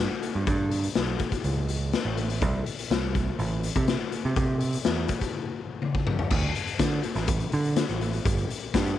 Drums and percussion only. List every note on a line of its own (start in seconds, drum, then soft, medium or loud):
0.23 closed hi-hat medium
0.47 kick loud
0.47 closed hi-hat medium
0.71 closed hi-hat medium
0.83 closed hi-hat medium
0.95 snare loud
0.95 closed hi-hat medium
1.19 kick medium
1.19 closed hi-hat medium
1.32 kick medium
1.32 closed hi-hat medium
1.44 closed hi-hat medium
1.69 closed hi-hat medium
1.93 snare loud
1.93 closed hi-hat medium
2.17 closed hi-hat medium
2.30 closed hi-hat medium
2.42 kick loud
2.42 closed hi-hat medium
2.66 closed hi-hat medium
2.79 closed hi-hat medium
2.91 snare loud
2.91 closed hi-hat medium
3.15 kick medium
3.15 closed hi-hat medium
3.39 closed hi-hat medium
3.63 closed hi-hat medium
3.76 kick medium
3.76 closed hi-hat medium
3.88 snare loud
3.88 closed hi-hat medium
4.12 closed hi-hat medium
4.36 kick loud
4.36 closed hi-hat medium
4.60 closed hi-hat medium
4.73 closed hi-hat medium
4.84 snare loud
4.84 closed hi-hat medium
5.08 kick medium
5.08 closed hi-hat medium
5.21 kick medium
5.21 closed hi-hat medium
5.82 high tom medium
5.95 kick medium
6.07 mid tom loud
6.19 floor tom medium
6.30 kick loud
6.30 crash loud
6.55 closed hi-hat medium
6.67 closed hi-hat soft
6.79 kick medium
6.79 snare loud
6.79 closed hi-hat loud
7.03 closed hi-hat medium
7.15 snare soft
7.15 closed hi-hat soft
7.27 kick loud
7.27 closed hi-hat loud
7.40 closed hi-hat medium
7.52 closed hi-hat medium
7.64 closed hi-hat soft
7.76 snare loud
7.76 closed hi-hat loud
7.89 closed hi-hat medium
8.01 closed hi-hat medium
8.13 closed hi-hat soft
8.25 kick loud
8.25 closed hi-hat loud
8.38 closed hi-hat medium
8.50 closed hi-hat medium
8.74 kick medium
8.74 snare loud
8.74 closed hi-hat loud
8.86 closed hi-hat medium